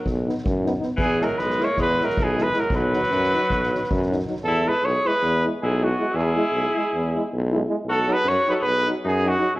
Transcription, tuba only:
0.05 B1
0.45 F#2
0.98 E2
1.39 B1
1.77 E2
2.17 B1
2.72 B1
3.10 F#2
3.51 B1
3.91 F#2
4.43 E2
4.83 B1
5.23 E2
5.63 B1
6.14 E2
6.52 B1
6.93 E2
7.33 B1
7.85 B1
8.24 F#2
8.64 B1
9.05 F#2
9.56 C#2

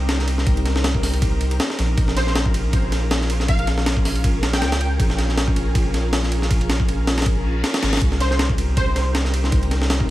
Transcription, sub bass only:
Already playing: C2
0.47 C2
1.79 A#1
1.98 A#1
3.48 A#1
4.62 C#2
5.00 A#1
6.51 A#1
7.83 G#1
8.02 C2
9.52 C2

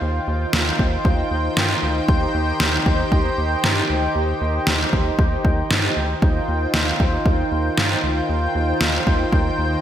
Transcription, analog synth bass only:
0.02 D#2
0.27 D#2
0.53 D#2
0.79 D#2
1.05 D#2
1.31 D#2
1.57 G2
1.83 D2
2.09 D#2
2.34 D#2
2.60 D#2
2.86 D#2
3.12 D#2
3.38 D#2
3.64 G2
3.90 D2
4.15 D#2
4.41 D#2
4.67 D#2
4.93 D#2
5.19 D#2
5.45 D#2
5.71 G2
5.97 D2
6.22 D#2
6.48 D#2
6.74 D#2
7.00 D#2
7.26 D#2
7.52 D#2
7.78 G2
8.03 D2
8.29 D#2
8.55 D#2
8.81 D#2
9.07 D#2
9.33 D#2
9.58 D#2

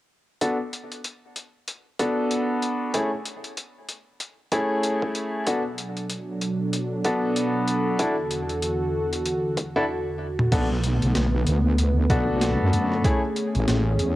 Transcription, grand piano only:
0.41 B3 D4 F#4 A4
1.99 B3 D4 F#4 A4
2.94 A3 C#4 E4 G#4
4.52 A3 C#4 E4 G#4
5.47 B3 D4 F#4 A4
7.05 B3 D4 F#4 A4
7.99 D4 E4 F#4 A4
9.76 D4 E4 F#4 A4
10.52 B3 D4 F#4 A4
12.10 B3 D4 F#4 A4
13.05 A3 C#4 E4 G#4

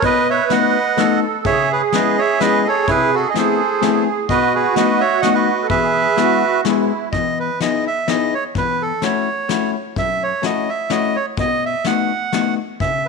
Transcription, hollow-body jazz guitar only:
0.04 B2
0.50 A3 B3 D#4 F#4
0.97 A3 B3 D#4 F#4
1.46 C#3
1.93 G#3 B3 C#4 E4
2.40 G#3 B3 C#4 E4
2.88 C3
3.34 A3 B3 C4 E4
3.82 A3 B3 C4 E4
4.30 B2
4.76 A3 B3 D#4 F#4
5.24 A3 B3 D#4 F#4
5.71 E2
6.17 G#3 B3 E4 G#4
6.65 G#3 B3 E4 G#4
7.14 E2
7.61 B3 D#4 E4 G#4
8.08 B3 D#4 E4 G#4
8.56 E2
9.02 A3 C#4 E4 F#4
9.49 A3 C#4 E4 F#4
9.97 F#2
10.42 A3 C#4 E4 F#4
10.90 A3 C#4 E4 F#4
11.39 B2
11.86 A3 B3 D#4 F#4
12.33 A3 B3 D#4 F#4
12.80 C#3

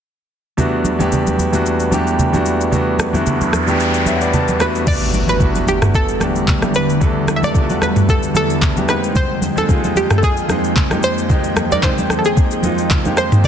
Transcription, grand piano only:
0.57 E2 G3 A3 B3 D4 F#4
0.99 E2 G3 A3 B3 D4 G4
1.52 E2 G3 A3 B3 D4 F#4
1.91 E2 G3 A3 B3 D4 G4
2.33 E2 G3 A3 B3 D4 F#4
2.71 E2 G3 A3 B3 D4 F#4
3.13 E2 G3 A3 B3 D4 F#4
3.67 E2 G3 A3 B3 D4 G4
4.07 C#5 E5
4.16 F#5
4.22 B4 D5
4.34 A5
4.48 G4 B4
4.59 E2 G3 A3 B3 D4 F#4 B5
4.86 E2 G3 A3 B3 D4 F#4
5.27 E2 G3 A3 B3 D4 F#4
5.39 E2 G3 A3 B3 D4 F#4
6.20 E2 G3 A3 B3 D4 G4
6.61 E2 G3 A3 B3 D4 G4
7.00 E2 G3 A3 B3 D4 A4
7.42 E2 G3 A3 B3 D4 A4
7.54 E2 G3 A3 B3 D4 F4
7.63 F#4
8.34 E2 G3 A3 B3 D4 A4
8.75 E2 G3 A3 B3 D4 G4
8.87 F2 G3 A#3 C4 D#4 G4
8.94 G#3
9.56 F2 G#3 A#3 C4 D#4 G#4
9.68 F2 G3 A#3 C4 D#4 F4
9.75 G#3
10.48 F2 G#3 A#3 C4 D#4 G#4
10.90 F2 G#3 A#3 C4 D#4 G4
11.29 F2 G#3 A#3 C4 D#4 G4
11.70 F2 G#3 A#3 C4 D#4 A#4
11.82 F2 G#3 A#3 C4 D#4 G4
12.63 F2 G#3 A#3 C4 D#4 F4
13.04 F2 G#3 A#3 C4 D#4 G4
13.43 E2 G3 A3 B3

